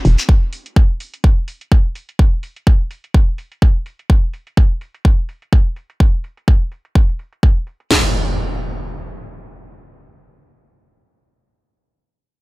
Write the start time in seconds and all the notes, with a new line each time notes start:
0.05 E1, open hi-hat
0.18 closed hi-hat, shekere
0.29 kick, closed hi-hat
0.53 open hi-hat
0.66 closed hi-hat
0.76 kick, closed hi-hat
1.00 open hi-hat
1.14 closed hi-hat
1.24 kick, closed hi-hat
1.48 open hi-hat
1.61 closed hi-hat
1.72 kick, closed hi-hat
1.95 open hi-hat
2.09 closed hi-hat
2.19 kick, closed hi-hat
2.43 open hi-hat
2.56 closed hi-hat
2.67 kick, closed hi-hat
2.91 open hi-hat
3.04 closed hi-hat
3.14 kick, closed hi-hat
3.38 open hi-hat
3.52 closed hi-hat
3.62 kick, closed hi-hat
3.86 open hi-hat
3.99 closed hi-hat
4.10 kick
4.34 open hi-hat
4.47 closed hi-hat
4.57 kick, closed hi-hat
4.81 open hi-hat
4.94 closed hi-hat
5.05 kick
5.29 open hi-hat
5.42 closed hi-hat
5.53 kick
5.76 open hi-hat
5.90 closed hi-hat
6.00 kick
6.24 open hi-hat
6.37 closed hi-hat
6.48 kick
6.72 open hi-hat
6.85 closed hi-hat
6.95 kick
7.09 open hi-hat
7.19 open hi-hat
7.33 closed hi-hat
7.43 kick
7.67 open hi-hat
7.80 closed hi-hat
7.91 snare, crash, impact